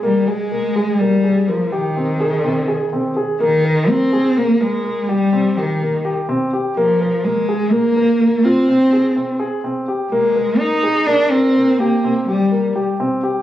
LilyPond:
<<
  \new Staff \with { instrumentName = "Grand piano" } { \time 7/8 \key bes \mixolydian \tempo 4 = 125 bes8 aes'8 bes8 aes'8 bes8 aes'8 bes8 | g'8 c'8 aes'8 c'8 aes'8 c'8 aes'8 | bes8 bes'8 bes8 aes'8 bes8 bes'8 bes8 | g'8 c'8 g'8 bes8 g'8 c'8 g'8 |
bes8 bes'8 bes8 aes'8 bes8 bes'8 bes8 | f'8 c'8 aes'8 c'8 aes'8 c'8 g'8 | bes8 bes'8 bes8 aes'8 bes8 bes'8 bes8 | g'8 c'8 g'8 bes8 g'8 c'8 g'8 | }
  \new Staff \with { instrumentName = "Cello" } { \clef bass \time 7/8 \key bes \mixolydian g8 aes4. g4 f8 | ees2. r8 | ees4 c'4 bes8 aes4 | g4 ees4 r4. |
f4 aes4 bes4. | c'2 r4. | aes4 ees'4 d'8 c'4 | bes4 g4 r4. | }
>>